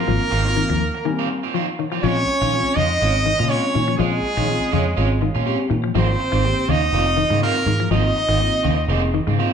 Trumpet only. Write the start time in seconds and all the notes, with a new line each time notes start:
Already playing: A#4
2.03 C#5
2.76 D#5
3.50 C#5
3.98 G#4
5.97 C5
6.70 D#5
7.43 A#4
7.91 D#5